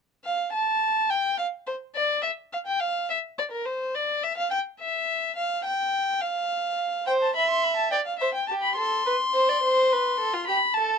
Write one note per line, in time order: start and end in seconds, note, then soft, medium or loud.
0.24 0.51 F5 medium
0.53 1.12 A5 medium
1.10 1.38 G5 medium
1.38 1.46 F5 medium
1.67 1.75 C5 medium
1.95 2.22 D5 medium
2.22 2.30 E5 medium
2.53 2.58 F5 medium
2.66 2.82 G5 medium
2.80 3.09 F5 medium
3.10 3.18 E5 medium
3.38 3.44 D5 medium
3.51 3.66 A#4 medium
3.65 3.96 C5 medium
3.95 4.24 D5 medium
4.23 4.37 E5 medium
4.37 4.50 F5 medium
4.51 4.59 G5 medium
4.80 5.36 E5 medium
5.36 5.64 F5 medium
5.64 6.23 G5 medium
6.21 7.06 F5 medium
7.06 7.33 C5 medium
7.06 7.13 G5 medium
7.22 7.35 A5 medium
7.35 7.91 E5 medium
7.35 7.49 B5 medium
7.50 7.65 C6 medium
7.63 7.76 B5 medium
7.76 7.90 A5 medium
7.91 8.00 D5 medium
7.91 7.97 G5 medium
8.05 8.18 F5 medium
8.19 8.29 C5 medium
8.19 8.33 E5 medium
8.34 8.47 G5 medium
8.48 8.76 G4 medium
8.48 8.53 A5 medium
8.62 8.76 B5 medium
8.77 9.05 A4 medium
8.77 10.43 C6 medium
9.06 9.14 B4 medium
9.33 9.50 C5 medium
9.48 9.62 D5 medium
9.62 9.93 C5 medium
9.92 10.19 B4 medium
10.20 10.35 A4 medium
10.33 10.47 F4 medium
10.47 10.56 G4 medium
10.47 10.76 B5 medium
10.74 10.98 A4 medium
10.74 10.98 A5 medium